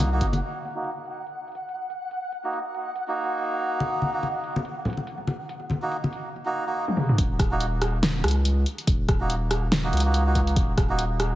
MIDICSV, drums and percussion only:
0, 0, Header, 1, 2, 480
1, 0, Start_track
1, 0, Key_signature, -6, "minor"
1, 0, Tempo, 422535
1, 481, Time_signature, 4, 2, 24, 8
1, 12896, End_track
2, 0, Start_track
2, 0, Title_t, "Drums"
2, 2, Note_on_c, 9, 62, 78
2, 2, Note_on_c, 9, 63, 64
2, 115, Note_off_c, 9, 62, 0
2, 115, Note_off_c, 9, 63, 0
2, 238, Note_on_c, 9, 42, 56
2, 239, Note_on_c, 9, 36, 62
2, 352, Note_off_c, 9, 42, 0
2, 353, Note_off_c, 9, 36, 0
2, 373, Note_on_c, 9, 63, 92
2, 376, Note_on_c, 9, 42, 36
2, 480, Note_off_c, 9, 42, 0
2, 480, Note_on_c, 9, 42, 73
2, 487, Note_off_c, 9, 63, 0
2, 593, Note_off_c, 9, 42, 0
2, 718, Note_on_c, 9, 42, 46
2, 832, Note_off_c, 9, 42, 0
2, 958, Note_on_c, 9, 42, 77
2, 1072, Note_off_c, 9, 42, 0
2, 1198, Note_on_c, 9, 42, 46
2, 1312, Note_off_c, 9, 42, 0
2, 1437, Note_on_c, 9, 42, 72
2, 1551, Note_off_c, 9, 42, 0
2, 1679, Note_on_c, 9, 42, 45
2, 1726, Note_off_c, 9, 42, 0
2, 1726, Note_on_c, 9, 42, 58
2, 1760, Note_off_c, 9, 42, 0
2, 1760, Note_on_c, 9, 42, 71
2, 1874, Note_off_c, 9, 42, 0
2, 1918, Note_on_c, 9, 42, 75
2, 2031, Note_off_c, 9, 42, 0
2, 2158, Note_on_c, 9, 42, 52
2, 2271, Note_off_c, 9, 42, 0
2, 2397, Note_on_c, 9, 42, 71
2, 2511, Note_off_c, 9, 42, 0
2, 2638, Note_on_c, 9, 42, 48
2, 2752, Note_off_c, 9, 42, 0
2, 2878, Note_on_c, 9, 42, 74
2, 2991, Note_off_c, 9, 42, 0
2, 3119, Note_on_c, 9, 42, 49
2, 3233, Note_off_c, 9, 42, 0
2, 3357, Note_on_c, 9, 42, 72
2, 3471, Note_off_c, 9, 42, 0
2, 3599, Note_on_c, 9, 42, 45
2, 3644, Note_off_c, 9, 42, 0
2, 3644, Note_on_c, 9, 42, 58
2, 3679, Note_off_c, 9, 42, 0
2, 3679, Note_on_c, 9, 42, 74
2, 3792, Note_off_c, 9, 42, 0
2, 3841, Note_on_c, 9, 42, 74
2, 3955, Note_off_c, 9, 42, 0
2, 4082, Note_on_c, 9, 42, 51
2, 4196, Note_off_c, 9, 42, 0
2, 4320, Note_on_c, 9, 42, 70
2, 4321, Note_on_c, 9, 62, 72
2, 4434, Note_off_c, 9, 42, 0
2, 4435, Note_off_c, 9, 62, 0
2, 4561, Note_on_c, 9, 42, 50
2, 4565, Note_on_c, 9, 63, 75
2, 4675, Note_off_c, 9, 42, 0
2, 4678, Note_off_c, 9, 63, 0
2, 4801, Note_on_c, 9, 42, 73
2, 4805, Note_on_c, 9, 62, 49
2, 4914, Note_off_c, 9, 42, 0
2, 4918, Note_off_c, 9, 62, 0
2, 5040, Note_on_c, 9, 42, 49
2, 5153, Note_off_c, 9, 42, 0
2, 5182, Note_on_c, 9, 62, 69
2, 5280, Note_on_c, 9, 42, 74
2, 5296, Note_off_c, 9, 62, 0
2, 5394, Note_off_c, 9, 42, 0
2, 5512, Note_on_c, 9, 64, 78
2, 5520, Note_on_c, 9, 42, 42
2, 5563, Note_off_c, 9, 42, 0
2, 5563, Note_on_c, 9, 42, 58
2, 5599, Note_off_c, 9, 42, 0
2, 5599, Note_on_c, 9, 42, 73
2, 5626, Note_off_c, 9, 64, 0
2, 5650, Note_on_c, 9, 62, 47
2, 5713, Note_off_c, 9, 42, 0
2, 5760, Note_on_c, 9, 42, 73
2, 5763, Note_off_c, 9, 62, 0
2, 5874, Note_off_c, 9, 42, 0
2, 5991, Note_on_c, 9, 62, 66
2, 5998, Note_on_c, 9, 42, 52
2, 6105, Note_off_c, 9, 62, 0
2, 6112, Note_off_c, 9, 42, 0
2, 6238, Note_on_c, 9, 42, 70
2, 6352, Note_off_c, 9, 42, 0
2, 6471, Note_on_c, 9, 62, 44
2, 6480, Note_on_c, 9, 42, 48
2, 6482, Note_on_c, 9, 63, 80
2, 6584, Note_off_c, 9, 62, 0
2, 6594, Note_off_c, 9, 42, 0
2, 6596, Note_off_c, 9, 63, 0
2, 6721, Note_on_c, 9, 42, 73
2, 6835, Note_off_c, 9, 42, 0
2, 6861, Note_on_c, 9, 62, 67
2, 6958, Note_on_c, 9, 42, 49
2, 6974, Note_off_c, 9, 62, 0
2, 7072, Note_off_c, 9, 42, 0
2, 7817, Note_on_c, 9, 48, 46
2, 7918, Note_on_c, 9, 47, 74
2, 7930, Note_off_c, 9, 48, 0
2, 8031, Note_off_c, 9, 47, 0
2, 8057, Note_on_c, 9, 45, 75
2, 8159, Note_on_c, 9, 36, 117
2, 8161, Note_on_c, 9, 42, 80
2, 8170, Note_off_c, 9, 45, 0
2, 8273, Note_off_c, 9, 36, 0
2, 8275, Note_off_c, 9, 42, 0
2, 8399, Note_on_c, 9, 36, 105
2, 8401, Note_on_c, 9, 37, 53
2, 8401, Note_on_c, 9, 42, 53
2, 8513, Note_off_c, 9, 36, 0
2, 8515, Note_off_c, 9, 37, 0
2, 8515, Note_off_c, 9, 42, 0
2, 8639, Note_on_c, 9, 42, 87
2, 8752, Note_off_c, 9, 42, 0
2, 8879, Note_on_c, 9, 37, 54
2, 8879, Note_on_c, 9, 42, 55
2, 8992, Note_off_c, 9, 37, 0
2, 8992, Note_off_c, 9, 42, 0
2, 9121, Note_on_c, 9, 38, 117
2, 9121, Note_on_c, 9, 42, 79
2, 9234, Note_off_c, 9, 38, 0
2, 9234, Note_off_c, 9, 42, 0
2, 9360, Note_on_c, 9, 37, 78
2, 9360, Note_on_c, 9, 42, 51
2, 9407, Note_off_c, 9, 42, 0
2, 9407, Note_on_c, 9, 42, 63
2, 9440, Note_off_c, 9, 42, 0
2, 9440, Note_on_c, 9, 42, 81
2, 9474, Note_off_c, 9, 37, 0
2, 9554, Note_off_c, 9, 42, 0
2, 9601, Note_on_c, 9, 42, 80
2, 9714, Note_off_c, 9, 42, 0
2, 9840, Note_on_c, 9, 42, 57
2, 9953, Note_off_c, 9, 42, 0
2, 9979, Note_on_c, 9, 42, 38
2, 10080, Note_on_c, 9, 36, 124
2, 10081, Note_off_c, 9, 42, 0
2, 10081, Note_on_c, 9, 42, 80
2, 10194, Note_off_c, 9, 36, 0
2, 10194, Note_off_c, 9, 42, 0
2, 10321, Note_on_c, 9, 36, 113
2, 10321, Note_on_c, 9, 37, 51
2, 10321, Note_on_c, 9, 42, 55
2, 10434, Note_off_c, 9, 36, 0
2, 10435, Note_off_c, 9, 37, 0
2, 10435, Note_off_c, 9, 42, 0
2, 10562, Note_on_c, 9, 42, 85
2, 10676, Note_off_c, 9, 42, 0
2, 10800, Note_on_c, 9, 37, 55
2, 10800, Note_on_c, 9, 42, 55
2, 10914, Note_off_c, 9, 37, 0
2, 10914, Note_off_c, 9, 42, 0
2, 11040, Note_on_c, 9, 38, 122
2, 11040, Note_on_c, 9, 42, 80
2, 11154, Note_off_c, 9, 38, 0
2, 11154, Note_off_c, 9, 42, 0
2, 11280, Note_on_c, 9, 42, 52
2, 11327, Note_off_c, 9, 42, 0
2, 11327, Note_on_c, 9, 42, 65
2, 11362, Note_off_c, 9, 42, 0
2, 11362, Note_on_c, 9, 42, 79
2, 11476, Note_off_c, 9, 42, 0
2, 11520, Note_on_c, 9, 42, 87
2, 11634, Note_off_c, 9, 42, 0
2, 11760, Note_on_c, 9, 36, 65
2, 11760, Note_on_c, 9, 42, 55
2, 11874, Note_off_c, 9, 36, 0
2, 11874, Note_off_c, 9, 42, 0
2, 11898, Note_on_c, 9, 42, 39
2, 12000, Note_off_c, 9, 42, 0
2, 12000, Note_on_c, 9, 36, 121
2, 12000, Note_on_c, 9, 42, 79
2, 12114, Note_off_c, 9, 36, 0
2, 12114, Note_off_c, 9, 42, 0
2, 12241, Note_on_c, 9, 36, 115
2, 12241, Note_on_c, 9, 37, 52
2, 12241, Note_on_c, 9, 42, 55
2, 12354, Note_off_c, 9, 36, 0
2, 12355, Note_off_c, 9, 37, 0
2, 12355, Note_off_c, 9, 42, 0
2, 12480, Note_on_c, 9, 42, 81
2, 12594, Note_off_c, 9, 42, 0
2, 12720, Note_on_c, 9, 37, 53
2, 12720, Note_on_c, 9, 42, 54
2, 12834, Note_off_c, 9, 37, 0
2, 12834, Note_off_c, 9, 42, 0
2, 12896, End_track
0, 0, End_of_file